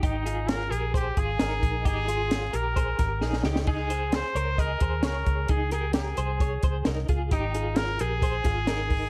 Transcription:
<<
  \new Staff \with { instrumentName = "Clean electric guitar" } { \time 4/4 \key aes \major \tempo 4 = 132 <ees' g'>8 <f' aes'>4 <g' bes'>8 <aes' c''>8 <f' aes'>8 <ees' bes'>4 | <ees' g'>8 <f' aes'>4 <g' bes'>8 <aes' c''>8 <g' bes'>8 <ees' aes'>8 <ees' g'>8 | <ees' aes'>8 <aes' c''>4 <bes' des''>8 <aes' ees''>8 <aes' c''>8 <aes' des''>4 | <ees' aes'>8 <g' bes'>4 <aes' c''>8 <aes' des''>8 <aes' c''>8 <ees' bes'>8 <f' aes'>8 |
<ees' g'>8 <f' aes'>4 <g' bes'>8 <aes' c''>8 <f' aes'>8 <ees' bes'>4 | }
  \new Staff \with { instrumentName = "Trumpet" } { \time 4/4 \key aes \major ees'4 bes'8 aes'8 g'8 aes'4. | aes'4. bes'2 r8 | aes'4 c''4 bes'4 bes'4 | aes'8 aes'8 aes'2 r4 |
ees'4 bes'8 aes'2~ aes'8 | }
  \new Staff \with { instrumentName = "Fingered electric bass" } { \clef bass \time 4/4 \key aes \major aes,,4. bes,,4 aes,,8 aes,,8 bes,,8 | aes,,4. bes,,4 aes,,8 bes,,8 des,8~ | des,4. des,4 ees,8 des,8 des,8 | des,4. c,4 des,8 c,8 des,8 |
aes,,4. bes,,4 aes,,4. | }
  \new DrumStaff \with { instrumentName = "Drums" } \drummode { \time 4/4 <hh bd>8 hh8 <hh sn>8 hh8 <hh bd>8 <hh bd>8 <hh sn>8 <hh bd>8 | <hh bd>8 hh8 <hh sn>8 hh8 <hh bd>8 <hh bd sn>8 sn16 sn16 sn16 sn16 | <cymc bd>8 hh8 <hh sn>8 hh8 <hh bd>8 <hh bd>8 <hh sn>8 <hh bd>8 | <hh bd>8 hh8 <hh sn>8 hh8 <hh bd>8 <hh bd>8 <hh sn>8 <hh bd>8 |
<hh bd>8 hh8 <hh sn>8 hh8 <hh bd>8 <hh bd sn>8 <hh sn>8 <hho bd>8 | }
>>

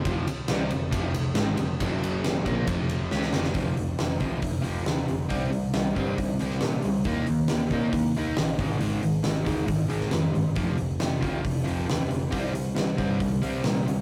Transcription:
<<
  \new Staff \with { instrumentName = "Overdriven electric guitar" } { \clef bass \time 4/4 \key f \minor \tempo 4 = 137 <f, c f>8 r8 <c g c'>8 <f, c>8 <f, c f>8 <f, c>8 <aes, ees aes>8 <f, c>8 | <ges, des ges>4. <bes, f bes>8 <f, c f>4 <des aes des'>8 <f, c f>8 | <f, c f>8 <f, c>8 <f, c>8 <f, c f>8 <f, c>8 <f, c f>8 <f, c>8 <f, c>8 | <c g c'>8 <c g>8 <c g>8 <c g c'>8 <c g>8 <c g c'>8 <c g>8 <c g>8 |
<ees bes ees'>8 <ees bes>8 <ees bes>8 <ees bes ees'>8 <ees bes>8 <ees bes ees'>8 <ees bes>8 <aes, ees aes>8 | <aes, ees aes>8 <aes, ees>8 <aes, ees>8 <aes, ees aes>8 <aes, ees>8 <aes, ees aes>8 <aes, ees>8 <aes, ees>8 | <f, c f>8 <f, c>8 <f, c>8 <f, c f>8 <f, c>8 <f, c f>8 <f, c>8 <f, c>8 | <c g c'>8 <c g>8 <c g>8 <c g c'>8 <c g>8 <c g c'>8 <c g>8 <c g>8 | }
  \new Staff \with { instrumentName = "Picked electric bass" } { \clef bass \time 4/4 \key f \minor f,,8 r8 c,8 f,,8 f,,8 f,,8 aes,,8 f,,8 | ges,,4. bes,,8 f,,4 des,8 f,,8 | f,,8 f,,8 f,,8 c,8 f,,8 f,,8 ees,8 f,,8 | c,8 c,8 c,8 g,8 c,8 c,8 bes,8 des,8 |
ees,8 ees,8 ees,8 bes,8 ees,8 ees,8 bes,,8 aes,,8 | aes,,8 aes,,8 aes,,8 ees,8 aes,,8 aes,,8 f,8 g,,8 | f,,8 f,,8 f,,8 c,8 f,,8 f,,8 ees,8 f,,8 | c,8 c,8 c,8 g,8 c,8 c,8 bes,8 des,8 | }
  \new DrumStaff \with { instrumentName = "Drums" } \drummode { \time 4/4 <bd cymr>8 cymr8 <cymr sn>8 cymr8 <bd cymr>8 cymr8 <cymr sn>8 cymr8 | <bd cymr>8 cymr8 <cymr sn>8 <bd cymr>8 <bd cymr>8 cymr8 sn16 sn16 sn16 sn16 | <hho bd>8 hho8 <hho sn>8 <hho bd>8 <hho bd>8 hho8 <hho sn>8 hho8 | <hho bd>8 hho8 <hho sn>8 <hho bd>8 <hho bd>8 hho16 sn16 <hho sn>8 hho8 |
<hho bd>8 hho8 <hho sn>8 <hho bd>8 <hho bd>8 hho8 <hho sn>8 <hho bd>8 | hho8 hho8 <hho sn>8 <hho bd>8 <hho bd>8 hho16 sn16 <hho sn>8 hho8 | <hho bd>8 hho8 <hho sn>8 <hho bd>8 <hho bd>8 hho8 <hho sn>8 hho8 | <hho bd>8 hho8 <hho sn>8 <hho bd>8 <hho bd>8 hho8 <hho sn>8 hho8 | }
>>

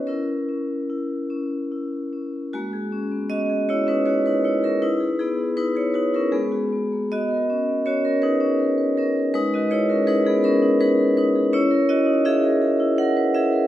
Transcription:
\new Staff \with { instrumentName = "Vibraphone" } { \time 3/4 \key gis \minor \tempo 4 = 80 << { <e' ais'>2~ <e' ais'>8 r8 | <ais fis'>4 <fis' dis''>8 <e' cis''>16 <dis' b'>16 <fis' cis''>16 <dis' b'>16 <e' cis''>16 <cis' ais'>16 | <dis' b'>8 <b gis'>8 <dis' b'>16 <e' cis''>16 <dis' b'>16 <cis' ais'>16 <b gis'>4 | <fis' dis''>4 <fis' cis''>16 <cis' ais'>16 <dis' b'>4 <cis' ais'>8 |
<dis' b'>16 <fis' dis''>16 <e' cis''>16 <cis' ais'>16 <dis' b'>16 <b gis'>16 <cis' ais'>8 <dis' b'>8 <dis' b'>8 | <e' cis''>8 <fis' dis''>8 <gis' e''>4 <ais' fis''>8 <gis' e''>8 | } \\ { cis'8 cis'8 e'8 cis'8 e'8 cis'8 | gis16 gis'16 cis'16 b16 cis'16 gis'16 fis'16 cis'16 gis'16 ais'16 cis'16 gis'16 | e'16 gis'16 e'16 dis'16 e'16 gis'16 fis'16 e'16 gis16 fis'16 b16 ais16 | b16 ais'16 cis'16 b16 cis'8 gis'16 cis'16 ais'16 b'16 r16 ais'16 |
gis16 ais'16 gis'16 fis'16 gis'16 dis'8 dis'16 gis'16 ais'16 r16 gis'16 | cis'16 ais'16 e'16 dis'16 e'16 ais'16 gis'16 e'8 b'16 e'16 ais'16 | } >> }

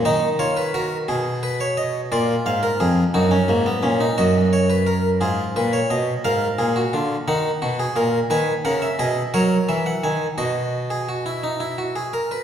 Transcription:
<<
  \new Staff \with { instrumentName = "Harpsichord" } { \time 6/8 \key ees \minor \tempo 4. = 58 << { ees''8 des''16 ces''16 bes'8 aes'8 ces''16 des''16 ees''8 | d''8 f''16 bes'16 aes'8 ges'4. | ees''8 des''16 ces''16 bes'8 aes'8 ces''16 des''16 ees''8 | f''4. ges''4. |
\key b \major gis''8 fis''16 e''16 dis''8 cis''8 e''16 fis''16 gis''8 | dis''2~ dis''8 r8 | } \\ { ees'8 f'8 ges'8 r4. | f'4. ees'16 des'16 bes16 ces'16 des'16 ees'16 | ges'4. f'4. | bes'8 aes'16 ges'16 f'8 ees'8 ges'16 aes'16 bes'8 |
b'8 ais'8 gis'8 ais'4. | fis'8. gis'16 fis'16 e'16 dis'16 e'16 fis'16 gis'16 ais'16 b'16 | } >> }
  \new Staff \with { instrumentName = "Harpsichord" } { \clef bass \time 6/8 \key ees \minor ees4. ces4. | bes,8 aes,8 f,8 ges,8 aes,8 bes,8 | ges,4. aes,8 bes,8 ces8 | aes,8 bes,8 d8 ees8 ces8 bes,8 |
\key b \major dis8 cis8 b,8 fis8 e8 dis8 | b,2~ b,8 r8 | }
>>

